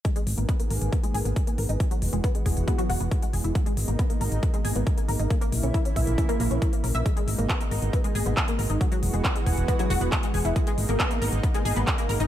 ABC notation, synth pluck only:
X:1
M:4/4
L:1/16
Q:1/4=137
K:G#m
V:1 name="Synth pluck"
G, G, z A, B, A, A z B, G, G B, z A, A D | F, F, z G, B, G, G z B, F, F B, z G, G E | G, G, z A, B, A, A z B, G, G B, z A, A D | A, A, z C E C e z E A, A, C E A, A e |
G, G, z A, B, A, A z B, G, G B, z A, A D | F, F, z G, B, G, G z B, F, F B, z G, G E | G, G, z A, B, A, A z B, G, G B, z A, A D |]